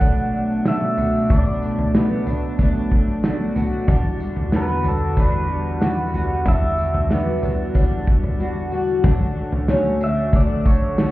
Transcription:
Already playing: analog synth pad B2 F#3 A3 D4, pedal steel guitar F#5
0.00 clean electric guitar B2 F#3 A3 D4, kick, floor tom, tambourine
0.33 clean electric guitar F#3 A3 D4
0.65 clean electric guitar B2 F#3 A3 D4, twelve-string acoustic guitar F#4, pedal steel guitar E5, snare, tambourine
0.97 clean electric guitar A3 D4, twelve-string acoustic guitar F#4, floor tom, tambourine
1.01 clean electric guitar F#3
1.30 clean electric guitar B2 F#3 A3 D4, pedal steel guitar D5, kick, floor tom, tambourine
1.61 clean electric guitar F#3 A3 D4, tambourine
1.79 floor tom
1.94 clean electric guitar B2 F#3 A3 D4, twelve-string acoustic guitar B3, snare, tambourine
2.27 clean electric guitar F#3 A3 D4, floor tom, tambourine
2.59 clean electric guitar B2 F#3 A3 D4, kick, floor tom, tambourine
2.92 clean electric guitar F#3 A3 D4, kick
3.23 clean electric guitar B2 F#3 A3 D4, twelve-string acoustic guitar F#4, snare, tambourine
3.56 clean electric guitar F#3 A3 D4, twelve-string acoustic guitar F#4, floor tom, tambourine
3.88 analog synth pad E2 D3 G3 F#4, clean electric guitar E3 G3 D4 F#4, kick, floor tom, tambourine
4.19 clean electric guitar D4 F#4, tambourine
4.24 clean electric guitar G3
4.36 floor tom
4.52 clean electric guitar E3 G3 D4, twelve-string acoustic guitar B3, pedal steel guitar B4, snare, tambourine
4.57 clean electric guitar F#4
4.84 clean electric guitar D4 F#4, pedal steel guitar A4, floor tom, tambourine
4.88 clean electric guitar G3
5.17 clean electric guitar E3 G3 D4 F#4, pedal steel guitar B4, kick, floor tom, tambourine
5.49 clean electric guitar G3 D4 F#4
5.81 clean electric guitar E3 G3 D4, snare, tambourine
5.85 clean electric guitar F#4
6.13 clean electric guitar G3 D4 F#4, floor tom, tambourine
6.46 clean electric guitar E3 G3 D4 F#4, pedal steel guitar E5, kick, floor tom, tambourine
6.77 clean electric guitar G3 D4 F#4, tambourine
6.94 floor tom
7.09 clean electric guitar E3 G3 D4 F#4, twelve-string acoustic guitar B3, snare, tambourine
7.42 clean electric guitar G3 D4 F#4, floor tom, tambourine
7.74 clean electric guitar E3 G3 D4 F#4, kick, floor tom, tambourine
8.06 clean electric guitar G3 D4 F#4, kick
8.24 floor tom
8.39 clean electric guitar E3 G3 D4
8.43 clean electric guitar F#4
8.71 clean electric guitar G3 D4 F#4
9.04 analog synth pad D2 D3 A3 F#4, clean electric guitar D3 A3 C#4 F#4, twelve-string acoustic guitar D4, kick, floor tom, tambourine
9.36 clean electric guitar A3 C#4 F#4
9.52 floor tom
9.68 clean electric guitar D3 A3 C#4 F#4, snare, tambourine
10.00 clean electric guitar A3 C#4 F#4, twelve-string acoustic guitar D4, pedal steel guitar E5, tambourine
10.33 clean electric guitar D3 A3 F#4, twelve-string acoustic guitar D4, pedal steel guitar D5, kick, floor tom, tambourine
10.65 clean electric guitar C#4 F#4, pedal steel guitar C#5, kick, tambourine
10.69 clean electric guitar A3
10.98 clean electric guitar D3 A3 C#4 F#4, snare, tambourine

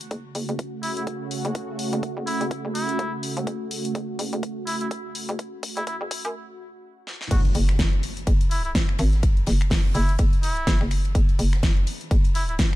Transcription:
Already playing: analog synth pad C#3 A3 F#4
0.01 closed hi-hat
0.11 fm bass F#1, kick, closed hi-hat
0.35 fm bass F#1, open hi-hat
0.49 fm bass F#1, closed hi-hat
0.59 kick, closed hi-hat
0.83 muted trumpet E4, open hi-hat
0.97 muted trumpet E4, closed hi-hat
1.07 kick, closed hi-hat
1.31 open hi-hat
1.45 fm bass F#1, closed hi-hat
1.55 kick, closed hi-hat
1.79 open hi-hat
1.93 fm bass F#1, closed hi-hat
2.03 kick, closed hi-hat
2.17 fm bass F#1
2.27 muted trumpet E4, open hi-hat
2.41 fm bass F#1, closed hi-hat
2.51 kick, closed hi-hat
2.65 fm bass F#1
2.75 muted trumpet E4, open hi-hat
2.89 closed hi-hat
2.99 fm bass E1, kick, closed hi-hat
3.23 open hi-hat
3.37 fm bass E1, closed hi-hat
3.47 fm bass F#1, kick, closed hi-hat
3.71 open hi-hat
3.85 closed hi-hat
3.95 fm bass F#1, kick, closed hi-hat
4.19 fm bass F#1, open hi-hat
4.33 fm bass F#1, closed hi-hat
4.43 kick, closed hi-hat
4.67 muted trumpet E4, open hi-hat
4.81 muted trumpet E4, closed hi-hat
4.91 kick, closed hi-hat
5.15 open hi-hat
5.29 fm bass F#1, closed hi-hat
5.39 kick, closed hi-hat
5.63 kick, open hi-hat
5.77 fm bass F#1, muted trumpet E4, closed hi-hat
5.87 muted trumpet E4, kick, closed hi-hat
6.01 fm bass F#1
6.11 kick, open hi-hat
6.25 fm bass F#2, closed hi-hat
7.07 snare
7.21 snare
7.31 fm bass F#1, muted trumpet F#4, kick, closed hi-hat, crash, ride, impact
7.45 closed hi-hat, ride
7.55 fm bass F#1, open hi-hat, ride
7.69 finger snap, snare
7.79 kick, snare, closed hi-hat, ride
7.93 ride
8.03 open hi-hat, ride
8.17 closed hi-hat
8.27 fm bass F#1, kick, closed hi-hat, ride
8.41 closed hi-hat, ride
8.51 muted trumpet E4, open hi-hat, ride
8.65 muted trumpet E4, closed hi-hat
8.75 kick, snare, closed hi-hat, ride
8.88 finger snap, ride
8.98 fm bass G#1, finger snap, open hi-hat, ride
9.13 snare, closed hi-hat
9.23 kick, closed hi-hat, ride
9.37 closed hi-hat
9.46 fm bass F#1, snare, open hi-hat, ride
9.61 finger snap, closed hi-hat, ride
9.70 kick, snare, closed hi-hat, open hi-hat
9.85 snare
9.94 fm bass F#1, muted trumpet E4, open hi-hat, ride
10.09 closed hi-hat
10.19 fm bass F#1, kick, closed hi-hat, ride
10.33 closed hi-hat
10.43 muted trumpet E4, snare, open hi-hat, ride
10.67 fm bass F#1, kick, snare, closed hi-hat, ride
10.81 fm bass F#1, finger snap, snare
10.91 finger snap, open hi-hat, ride
11.05 closed hi-hat, ride
11.15 fm bass F#1, kick, closed hi-hat, ride
11.29 closed hi-hat, ride
11.39 fm bass F#1, open hi-hat, ride
11.53 finger snap, snare, closed hi-hat
11.63 kick, snare, closed hi-hat, ride
11.76 ride
11.87 open hi-hat, ride
12.01 closed hi-hat
12.11 fm bass F#1, kick, closed hi-hat, ride
12.24 closed hi-hat, ride
12.35 muted trumpet E4, open hi-hat, ride
12.49 muted trumpet E4, closed hi-hat
12.59 kick, snare, closed hi-hat, ride

